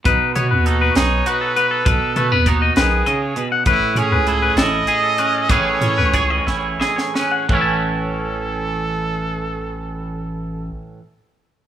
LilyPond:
<<
  \new Staff \with { instrumentName = "Clean electric guitar" } { \time 6/8 \key a \lydian \tempo 4. = 63 b'8 cis''16 b'16 a'16 b'16 gis'8 fis'16 a'16 b'16 a'16 | b'8 a'16 b'16 cis''16 dis''16 b'8 dis''16 cis''16 b'16 fis''16 | b'8 cis''16 b'16 a'16 b'16 a'8 gis'16 a'16 b'16 a'16 | b'8 a'16 b'16 cis''16 dis''16 cis''8 dis''16 cis''16 b'16 fis''16 |
<cis'' e'' a''>2.~ | <cis'' e'' a''>2. | }
  \new Staff \with { instrumentName = "Trumpet" } { \time 6/8 \key a \lydian dis'8 fis'4 cis''8 b'4 | a'8 b'8 fis'8 gis'4 r8 | e'8 gis'4 dis''4. | cis''2 r4 |
a'2.~ | a'2. | }
  \new Staff \with { instrumentName = "Clean electric guitar" } { \time 6/8 \key a \lydian << { r8 b8 dis'8 dis'8 fis'8 b8 | r8 a16 b16 dis'2 | r8 cis'8 e'8 e'8 gis'8 cis'8 | <e cis' e' gis'>8 cis'8 gis'8 e'8 gis'8 cis'8 |
<e cis' e'>2.~ | <e cis' e'>2. | } \\ { b,2. | b,4. dis8 cis8 b,8 | a,2. | a,2. |
a,2.~ | a,2. | } >> }
  \new Staff \with { instrumentName = "Sub bass" } { \clef bass \time 6/8 \key a \lydian b,,16 r16 b,16 dis,8. b,,8 r4 | b,,16 r16 b,16 dis,8. b,,8 r4 | a,,16 r16 a,16 cis,8. a,,8 r4 | a,,16 r16 a,16 cis,8. a,,8 r4 |
a,,2.~ | a,,2. | }
  \new DrumStaff \with { instrumentName = "Drums" } \drummode { \time 6/8 <hh bd>8 hh8 hh8 <hh sn>8 hh8 hh8 | <hh bd>8 hh8 <hh bd>8 <hh sn>8 hh8 hh8 | <hh bd>8 hh8 hh8 <hh sn>8 hh8 hh8 | <hh bd>8 hh8 <hh bd>8 sn8 sn16 sn16 sn8 |
bd4. r4. | r4. r4. | }
>>